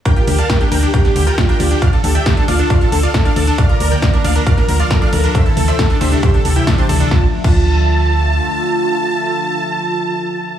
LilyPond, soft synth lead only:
\new Staff \with { instrumentName = "Soft synth lead" } { \time 4/4 \key d \minor \tempo 4 = 136 bes'4.~ bes'16 r16 g'4 f'4~ | f'16 r16 g'4 f'4 a'4~ a'16 r16 | d''4.~ d''16 r16 bes'4 a'4~ | a'16 r16 a'4 g'4 g'4~ g'16 r16 |
f'16 r8 f'2.~ f'16~ | f'1 | }